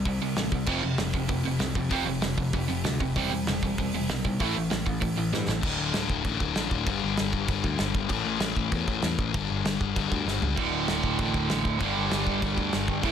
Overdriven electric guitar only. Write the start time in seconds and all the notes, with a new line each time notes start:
0.07 C3 G3
0.22 C3 G3
0.38 C3 G3
0.52 C3 G3
0.68 F2 C3 F3
0.83 F2 C3
0.99 F2 C3
1.14 F2 C3
1.29 F2 C3
1.45 F2 C3
1.60 F2 C3
1.76 F2 C3
1.92 F2 C3 F3
2.07 F2 C3
2.22 F2 C3
2.38 F2 C3
2.54 F2 C3
2.68 F2 C3
2.84 F2 C3
3.00 F2 C3
3.16 C3 G3 C4
3.31 C3 G3
3.48 C3 G3
3.63 C3 G3
3.79 C3 G3
3.94 C3 G3
4.10 C3 G3
4.25 C3 G3
4.40 A2 E3 A3
4.55 A2 E3
4.70 A2 E3
4.86 A2 E3
5.00 A2 E3
5.17 A2 E3
5.33 A2 E3
5.48 A2 E3
10.56 D2 A2 D3
11.80 G2 D3 G3
13.03 A2 E3 A3